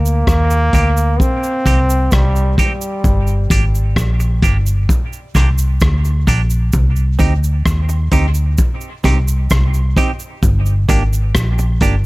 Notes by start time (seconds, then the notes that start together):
Already playing: D2 A#3
0.06 cabasa
0.27 D#2, kick, cross-stick, cabasa
0.50 muted clean electric guitar stroke, cabasa
0.73 D2 C4 D#4 G4, kick, closed hi-hat, cabasa
0.97 cabasa
1.20 C4, kick, cabasa
1.43 cabasa
1.66 C2 C4 D#4 G4, kick, closed hi-hat, cabasa
1.90 cabasa
2.11 C2 G3, kick, cross-stick, cabasa
2.36 cabasa
2.58 G3 C4 D#4 G4, kick, closed hi-hat, cabasa
2.81 cabasa
3.04 G1, kick, cabasa
3.27 cabasa
3.50 G#1 A#3 D4 G4, kick, closed hi-hat, cabasa
3.75 cabasa
3.96 A#1, kick, cross-stick, cabasa
4.20 muted clean electric guitar stroke, cabasa
4.42 G1 A#3 D4 G4, kick, closed hi-hat, cabasa
4.66 cabasa
4.89 kick, cabasa
5.13 cabasa
5.35 C2 A#3 D4 G4, kick, cross-stick, closed hi-hat, cabasa
5.58 cabasa
5.80 D2, kick, cross-stick, cabasa
6.05 cabasa
6.27 A#1 A#3 D4 G4, kick, closed hi-hat, cabasa
6.50 cabasa
6.73 C2, kick, cabasa
6.96 cabasa
7.19 D2 C4 D#4 G4, kick, closed hi-hat, cabasa
7.44 cabasa
7.66 D#2, kick, cross-stick, cabasa
7.89 muted clean electric guitar stroke, cabasa
8.12 D2 C4 D#4 G4, kick, closed hi-hat, cabasa
8.34 cabasa
8.58 kick, cabasa
8.81 cabasa
9.04 C2 C4 D#4 G4, kick, cross-stick, closed hi-hat, cabasa
9.28 cabasa
9.50 C2, kick, cross-stick, cabasa
9.74 cabasa
9.97 C4 D#4 G4, kick, closed hi-hat, cabasa
10.19 cabasa
10.43 G1, kick, cabasa
10.66 cabasa
10.89 G#1 A#3 D4 G4, kick, closed hi-hat, cabasa
11.13 cabasa
11.35 A#1, kick, cross-stick, cabasa
11.59 muted clean electric guitar stroke, cabasa
11.81 G1 A#3 D4 G4, kick, closed hi-hat, cabasa